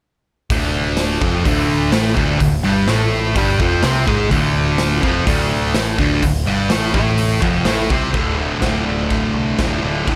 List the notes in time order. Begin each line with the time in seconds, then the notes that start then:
0.50 D1 D2 D3, kick, open hi-hat
0.97 snare, open hi-hat
1.21 F1 F2 F3, kick
1.45 D1 D2 D3, kick, open hi-hat
1.92 A1 A2 A3, snare, open hi-hat
2.16 D1 D2 D3, kick
2.40 D1 D2, kick, open hi-hat
2.64 G1 G2 G3
2.88 A1 A2 A3, snare, open hi-hat
3.36 G1 G2 G3, kick, open hi-hat
3.59 F1 F2 F3, kick
3.83 C2 C3 C4, snare, open hi-hat
4.07 G#1 G#2 G#3, kick
4.31 D1 D2 D3, kick, open hi-hat
4.78 snare, open hi-hat
5.02 F1 F2 F3, kick
5.26 D1 D2 D3, kick, open hi-hat
5.74 A1 A2 A3, snare, open hi-hat
5.98 D1 D2 D3, kick
6.23 D1 D2, kick, open hi-hat
6.46 G1 G2 G3
6.70 A1 A2 A3, snare, open hi-hat
6.94 A1 A2 A3, kick
7.18 open hi-hat
7.41 F1 F2 F3, kick
7.65 A1 A2 A3, snare, open hi-hat
7.90 C2 C3 C4, kick
8.12 D1 D2 A2, kick, crash
8.17 D3
8.38 D3
8.42 A2
8.61 D1 D2 A2, kick, snare, crash
8.65 D3
8.86 D1 A2 D3
9.10 D1, kick, crash
9.34 C2
9.59 D1 D2 A2, kick, snare, crash
9.63 D3
9.82 D1 D3
9.87 A2
10.06 D1 D2 A2, kick, crash
10.10 D3